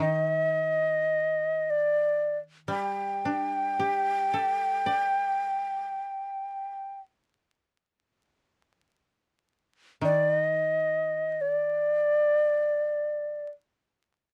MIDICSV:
0, 0, Header, 1, 3, 480
1, 0, Start_track
1, 0, Tempo, 500000
1, 13758, End_track
2, 0, Start_track
2, 0, Title_t, "Shakuhachi"
2, 0, Program_c, 0, 77
2, 13, Note_on_c, 0, 75, 69
2, 1633, Note_on_c, 0, 74, 67
2, 1647, Note_off_c, 0, 75, 0
2, 2285, Note_off_c, 0, 74, 0
2, 2584, Note_on_c, 0, 79, 77
2, 6710, Note_off_c, 0, 79, 0
2, 9642, Note_on_c, 0, 74, 67
2, 9949, Note_off_c, 0, 74, 0
2, 9949, Note_on_c, 0, 75, 67
2, 10956, Note_on_c, 0, 74, 64
2, 10970, Note_off_c, 0, 75, 0
2, 12943, Note_off_c, 0, 74, 0
2, 13758, End_track
3, 0, Start_track
3, 0, Title_t, "Koto"
3, 0, Program_c, 1, 107
3, 0, Note_on_c, 1, 51, 40
3, 2572, Note_on_c, 1, 55, 43
3, 3123, Note_on_c, 1, 62, 32
3, 3206, Note_off_c, 1, 51, 0
3, 3643, Note_on_c, 1, 67, 34
3, 4162, Note_on_c, 1, 69, 36
3, 4667, Note_on_c, 1, 74, 36
3, 5194, Note_off_c, 1, 62, 0
3, 5713, Note_off_c, 1, 55, 0
3, 5719, Note_off_c, 1, 67, 0
3, 6247, Note_off_c, 1, 69, 0
3, 6774, Note_off_c, 1, 74, 0
3, 9613, Note_on_c, 1, 51, 42
3, 12858, Note_off_c, 1, 51, 0
3, 13758, End_track
0, 0, End_of_file